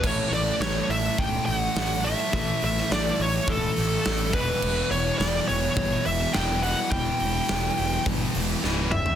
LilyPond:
<<
  \new Staff \with { instrumentName = "Lead electric guitar" } { \time 4/4 \key a \mixolydian \tempo 4 = 105 cis''8 d''8 cis''8 e''8 g''8 fis''4 e''8~ | e''8 e''8 d''8 cis''8 a'4. b'8~ | b'8 cis''8 d''8 cis''4 e''8 g''8 fis''8 | g''2 r4. e''8 | }
  \new Staff \with { instrumentName = "Distorted electric guitar" } { \clef bass \time 4/4 \key a \mixolydian <a, e a>2.~ <a, e a>8 <a, e a>8 | <a, e a>2.~ <a, e a>8 <e, b, e>8~ | <e, b, e>2. <e, b, e>8 <e, b, e>8~ | <e, b, e>2. <e, b, e>8 r8 | }
  \new Staff \with { instrumentName = "Picked electric bass" } { \clef bass \time 4/4 \key a \mixolydian a,,8 a,,8 a,,8 a,,8 cis,,8 a,,8 a,,4 | a,,8 a,,8 a,,8 a,,8 cis,,8 a,,8 a,,8 e,,8 | e,,8 e,,8 e,,8 e,,8 g,,8 e,,8 e,,4 | e,,8 e,,8 e,,8 e,,8 g,,8 e,,8 cis,,4 | }
  \new DrumStaff \with { instrumentName = "Drums" } \drummode { \time 4/4 <cymc bd>8 hho8 <hho sn>8 hho8 bd8 hho8 <hho sn>8 hho8 | bd8 hho16 sn16 <hho sn>8 hho8 <hho bd>8 <hho sn>8 <hho sn>8 bd8 | cymc8 hho8 <hho sn>8 hho8 <hho bd>8 hho8 <hho sn>8 hho8 | <hho bd>8 hho8 sn8 hho8 <hho bd>8 hho8 sn8 toml16 tomfh16 | }
>>